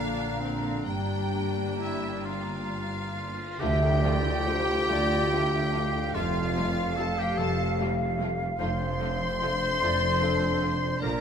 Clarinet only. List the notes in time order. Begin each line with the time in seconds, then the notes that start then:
Already playing: D4
1.78 E4
2.25 F4
3.60 G4
6.14 F4
6.97 A4
7.18 G4
7.39 A4
8.60 C5
11.02 A#4